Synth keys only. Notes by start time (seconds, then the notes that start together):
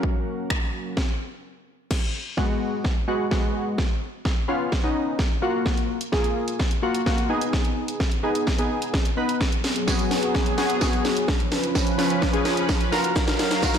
Already playing: A#3 C#4 F#4
2.37 G#3 B3 F#4
3.08 G#3 B3 F#4
3.31 G#3 B3 F#4
4.48 B3 C#4 F4
4.83 B3 C#4 D#4
5.42 A#3 F4 F#4
6.12 A#3 F4 G#4
6.83 A#3 F4 F#4
7.06 A#3 F4 F#4
7.29 B3 D#4 G#4
8.23 B3 D#4 G#4
8.58 B3 D#4 G#4
9.17 B3 D#4 B4
9.87 B3 F#4 G#4
10.58 B3 F#4 G#4
10.81 B3 F#4 G#4
11.98 C#4 F4 B4
12.33 C#4 F4 G#4
12.92 F4 F#4 A#4
13.62 F4 F#4 A#4